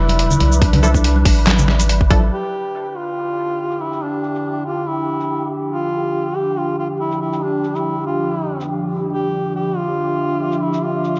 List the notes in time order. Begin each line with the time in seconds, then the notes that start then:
Already playing: F1 E4 B4 D5 E5 B5
0.09 closed hi-hat, high conga
0.19 closed hi-hat
0.31 low conga, shaker
0.40 C2, closed hi-hat, high conga
0.52 shaker
0.62 D4, kick, closed hi-hat
0.73 closed hi-hat, high conga, low conga
0.83 F3 D4 E4 A4, shaker
0.94 kick, shaker
1.04 closed hi-hat
1.16 high conga
1.25 A1, kick, open hi-hat
1.47 snare, clap, closed hi-hat, high conga
1.58 low conga, shaker
1.68 snare
1.80 closed hi-hat, high conga, shaker
1.84 G#1
1.89 closed hi-hat
2.01 kick
2.10 A1 F3 D4 E4 A4, kick, closed hi-hat, high conga
2.32 F3 D4 G4 E5
2.89 G4
2.96 F4
3.71 shaker
3.81 E4
3.92 shaker
4.02 D4
4.23 shaker
4.35 shaker
4.66 F4
4.87 E4
5.20 shaker
5.72 F4 G4
6.36 G4
6.58 F4
6.79 F4
7.00 E4
7.11 shaker
7.21 E4
7.33 shaker
7.42 D4
7.64 shaker
7.75 E4, shaker
8.07 F4
8.60 shaker
9.13 G4 E5
9.56 G4
9.77 F4
10.52 shaker
10.62 E4
10.73 shaker
10.83 F4
11.04 shaker
11.16 shaker